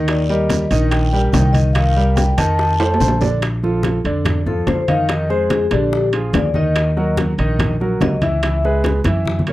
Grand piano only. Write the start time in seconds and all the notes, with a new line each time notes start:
Already playing: D#3 D#4 D#5
0.30 G3 G4 A#4
0.71 D#3 D#4 D#5
1.13 G3 G4 A#4
1.34 D#3 D#4 D#5
1.76 D#3 D#4 D#5
1.97 G3 G4 A#4
2.37 D#3 D#4 D#5
2.79 A3 A4 C5
3.00 A3 A4 C5
3.21 D3 D4 D5
3.63 F3 F4 A4
4.05 D3 D4 D5
4.47 F3 F4 A4
4.88 D#3 D#4 D#5
5.09 D#3 D#4 D#5
5.30 G#3 G#4 C5
5.71 D3 D4 D5
6.13 F3 F4 G#4
6.55 D#3 D#4 D#5
6.97 F#3 F#4 A#4
7.39 D#3 D#4 D#5
7.81 F#3 F#4 A#4
8.22 E3 E4 E5
8.43 E3 E4 E5
8.64 G#3 G#4 B4
9.06 E3 E4 E5
9.48 A#3 A#4 C#5